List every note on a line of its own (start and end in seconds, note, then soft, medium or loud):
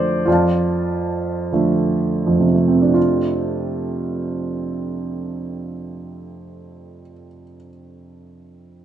0.00 0.27 F2 soft
0.00 0.22 D3 soft
0.00 0.22 F3 soft
0.00 0.23 A3 soft
0.00 0.29 C5 medium
0.00 0.27 D5 medium
0.25 1.48 F2 soft
0.25 2.45 F4 soft
0.25 2.92 D5 soft
0.30 2.93 F5 soft
0.30 2.95 A5 soft
1.52 2.92 D3 soft
1.52 2.92 F3 soft
1.52 2.52 A3 soft
2.27 7.00 F2 soft
2.40 7.13 C3 soft
2.54 7.27 A3 soft
2.68 7.41 C4 soft
2.82 7.55 D4 soft
2.94 7.67 F4 soft